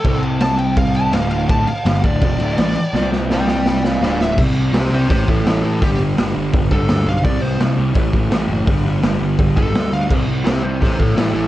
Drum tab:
CC |x-x-x-x-x-x-x-x-|x-x-x-x-x-x-x-x-|----------------|x---------------|
HH |----------------|----------------|----------------|----o---o---o---|
SD |----o-------o---|----o-------oo--|o-o-o-o-o-o-o-o-|----o-------o---|
BD |o-------o-------|o-----o-o-------|----------------|o-------o-o-----|

CC |----------------|----------------|----------------|x---------------|
HH |o---o---o---o---|o---o---o---o---|o---o---o---o---|----o---o---o---|
SD |----o-------o---|--o-o-------o---|----o-------o---|----o-------o---|
BD |o-------o-o-----|o-------o-o-----|o-------o-o-----|o-------o-o-----|